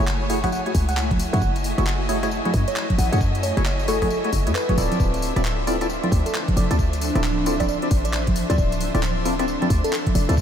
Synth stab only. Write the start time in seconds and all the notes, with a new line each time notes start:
0.30 A3 E4 F#4 G#4 C#5
0.44 A3 E4 F#4 G#4 C#5
0.66 A3 E4 F#4 G#4 C#5
1.33 A3 E4 F#4 G#4 C#5
1.78 A3 E4 F#4 G#4 C#5
2.09 A3 E4 F#4 G#4 C#5
2.23 A3 E4 F#4 G#4 C#5
2.45 A3 E4 F#4 G#4 C#5
3.12 A3 E4 F#4 G#4 C#5
3.57 A3 E4 F#4 G#4 C#5
3.88 A3 E4 F#4 G#4 C#5
4.02 A3 E4 F#4 G#4 C#5
4.24 A3 E4 F#4 G#4 C#5
4.47 A3 E4 F#4 G#4 C#5
4.69 A3 E4 F#4 G#4 C#5
4.78 C4 E4 F4 A4 D5
5.36 C4 E4 F4 A4 D5
5.67 C4 E4 F4 A4 D5
5.81 C4 E4 F4 A4 D5
6.04 C4 E4 F4 A4 D5
6.71 C4 E4 F4 A4 D5
7.15 C4 E4 F4 A4 D5
7.46 C4 E4 F4 A4 D5
7.60 C4 E4 F4 A4 D5
7.83 C4 E4 F4 A4 D5
8.50 C4 E4 F4 A4 D5
8.94 C4 E4 F4 A4 D5
9.25 C4 E4 F4 A4 D5
9.39 C4 E4 F4 A4 D5
9.62 C4 E4 F4 A4 D5
10.29 C4 E4 F4 A4 D5